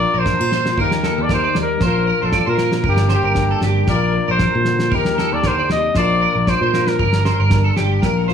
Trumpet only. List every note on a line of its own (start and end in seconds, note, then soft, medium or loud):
0.00 0.20 D5 loud
0.19 0.80 C5 medium
0.81 1.24 A#4 medium
1.22 1.32 D5 medium
1.34 1.56 C5 loud
1.62 1.83 A#4 medium
1.86 2.27 A#4 medium
2.25 2.49 A4 medium
2.49 2.83 A#4 medium
2.88 3.11 G4 medium
3.14 3.61 G4 medium
3.89 4.26 D5 medium
4.31 4.97 C5 medium
4.95 5.35 A#4 medium
5.33 5.48 D5 medium
5.47 5.71 C5 medium
5.71 5.95 D#5 loud
5.98 6.50 D5 loud
6.49 6.91 C5 medium
6.89 7.66 A#4 medium